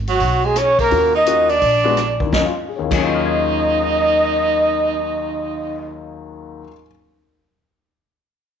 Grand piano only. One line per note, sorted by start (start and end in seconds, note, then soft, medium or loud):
0.90 1.11 A#3 medium
0.90 1.11 C#4 soft
0.90 1.12 F4 soft
0.90 1.12 F#4 medium
1.26 1.47 A#3 medium
1.26 1.47 C#4 soft
1.26 1.47 F4 soft
1.26 1.47 F#4 medium
1.84 1.96 G#3 medium
1.84 1.96 B3 medium
1.84 1.96 D4 medium
1.84 1.96 F#4 medium
2.20 2.40 D#2 medium
2.26 2.43 D#3 medium
2.33 2.46 F#3 medium
2.39 2.49 C#4 medium
2.45 2.53 F4 medium
2.69 6.63 G#4 soft
2.76 6.60 D#2 medium
2.76 6.66 C#5 soft
2.84 6.63 D#3 medium
2.84 6.70 F5 soft
2.91 6.67 F#3 medium
2.91 6.75 G#5 soft
2.98 6.70 C#4 medium
3.03 6.73 F4 medium
3.03 6.80 C#6 soft
3.14 6.86 F6 soft
3.25 6.91 G#6 soft